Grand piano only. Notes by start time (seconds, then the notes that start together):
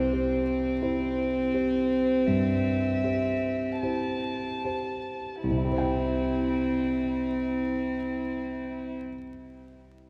Already playing: C2
0.13 G4 C5
0.82 E4 G4 C5
1.54 G4 C5
2.28 G2
3.04 G4 C5
3.83 E4 G4 C5
4.65 G4 C5
5.43 C2
5.51 C3
5.58 E4
5.65 G4
5.72 C5
5.78 G5